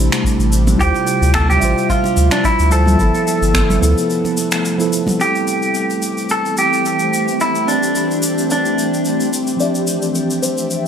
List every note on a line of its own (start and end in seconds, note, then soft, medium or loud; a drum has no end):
0.00 2.96 C3 medium
0.00 2.96 G3 medium
0.00 0.76 A3 medium
0.00 0.81 A3 medium
0.00 0.78 D4 medium
0.00 0.78 E4 medium
0.00 0.81 G4 medium
0.00 0.82 C5 medium
0.12 finger snap medium
0.12 shaker soft
0.24 kick medium
0.24 shaker medium
0.39 0.76 A1 loud
0.39 shaker soft
0.52 shaker medium
0.67 muted conga medium
0.67 high conga medium
0.67 low conga medium
0.67 shaker soft
0.76 0.92 D2 medium
0.76 1.57 G3 medium
0.76 1.58 E4 medium
0.76 kick medium
0.80 2.98 F3 medium
0.80 1.60 F4 medium
0.80 1.31 G4 loud
0.80 1.61 C5 medium
0.80 2.98 E5 medium
0.80 shaker medium
0.94 muted conga soft
0.94 shaker soft
1.07 shaker medium
1.22 1.59 D2 loud
1.22 shaker medium
1.34 1.49 A4 loud
1.34 finger snap medium
1.34 kick medium
1.34 high conga medium
1.34 shaker medium
1.50 1.87 G4 loud
1.50 low conga medium
1.50 shaker soft
1.58 1.75 A1 medium
1.58 2.67 G3 medium
1.58 2.68 E5 medium
1.58 shaker medium
1.63 2.69 F4 medium
1.63 2.71 C5 medium
1.78 shaker soft
1.89 2.32 F4 loud
1.89 kick medium
1.89 shaker soft
2.04 muted conga medium
2.04 high conga medium
2.04 shaker soft
2.17 2.30 D2 loud
2.17 shaker medium
2.31 2.45 D4 medium
2.31 finger snap medium
2.31 shaker soft
2.44 2.72 E4 loud
2.44 kick loud
2.44 shaker medium
2.59 2.97 D2 loud
2.59 shaker soft
2.70 2.96 G3 medium
2.70 2.96 E4 medium
2.70 2.97 F4 medium
2.70 4.61 A4 loud
2.70 2.97 C5 medium
2.70 shaker medium
2.86 high conga medium
2.86 low conga medium
2.86 shaker soft
2.96 3.12 G1 medium
2.96 3.77 F3 medium
2.96 3.78 B3 medium
2.96 5.18 B3 medium
2.96 kick medium
2.96 shaker medium
3.00 5.18 A3 medium
3.00 3.79 E4 medium
3.00 3.80 A4 medium
3.15 muted conga soft
3.15 shaker soft
3.27 shaker medium
3.42 3.79 G1 medium
3.42 shaker soft
3.54 finger snap medium
3.54 kick medium
3.54 high conga medium
3.54 shaker medium
3.70 low conga medium
3.70 shaker soft
3.78 3.95 D2 medium
3.78 4.75 F3 medium
3.78 4.76 B3 medium
3.83 4.77 E4 medium
3.83 4.78 A4 medium
3.83 shaker medium
3.98 shaker medium
4.10 shaker soft
4.25 muted conga medium
4.25 high conga medium
4.25 shaker soft
4.37 shaker medium
4.51 finger snap medium
4.51 shaker soft
4.65 shaker medium
4.78 5.16 F3 medium
4.78 5.17 B3 medium
4.78 5.17 E4 medium
4.78 5.18 A4 medium
4.78 shaker soft
4.93 shaker medium
5.07 muted conga medium
5.07 high conga medium
5.07 low conga medium
5.07 shaker soft
5.17 9.56 E3 medium
5.17 9.56 G3 medium
5.17 9.56 A3 medium
5.17 9.57 C4 medium
5.17 10.88 C4 medium
5.17 10.88 G4 medium
5.21 9.58 E4 medium
5.21 6.31 G4 medium
5.21 9.59 A4 medium
5.21 shaker medium
5.35 shaker soft
5.47 shaker medium
5.62 shaker soft
5.74 shaker medium
5.90 shaker soft
6.02 shaker medium
6.17 shaker soft
6.29 6.58 A4 medium
6.29 shaker soft
6.45 shaker soft
6.57 7.41 G4 medium
6.57 shaker medium
6.73 shaker soft
6.86 shaker soft
6.99 shaker soft
7.14 shaker medium
7.28 shaker soft
7.40 7.69 E4 medium
7.40 shaker medium
7.55 shaker soft
7.68 8.51 D4 medium
7.68 shaker medium
7.83 shaker soft
7.95 shaker soft
8.11 shaker soft
8.22 shaker medium
8.38 shaker soft
8.50 9.30 D4 medium
8.50 shaker medium
8.65 shaker soft
8.79 shaker medium
8.94 shaker soft
9.05 shaker medium
9.20 shaker soft
9.33 shaker medium
9.47 shaker soft
9.57 10.88 F3 medium
9.57 10.88 C4 medium
9.57 10.88 D4 medium
9.57 9.87 D5 medium
9.57 10.88 E5 medium
9.57 shaker medium
9.62 10.88 G4 medium
9.62 10.88 E5 medium
9.75 shaker soft
9.87 shaker medium
10.02 shaker soft
10.15 10.42 G4 medium
10.15 shaker soft
10.30 shaker soft
10.42 10.59 C5 medium
10.42 shaker medium
10.58 shaker soft
10.70 shaker soft